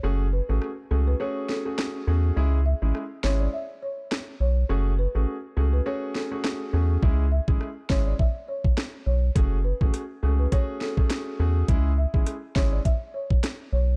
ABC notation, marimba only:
X:1
M:4/4
L:1/16
Q:"Swing 16ths" 1/4=103
K:C#m
V:1 name="Marimba"
z2 B z3 A B c z A z4 z | z2 e z3 c =d e z c z3 c z | z2 B z3 A B c z A z4 z | z2 e z3 c =d e z c z3 c z |
z2 B z3 A B c z A z4 z | z2 e z3 c =d e z c z3 c z |]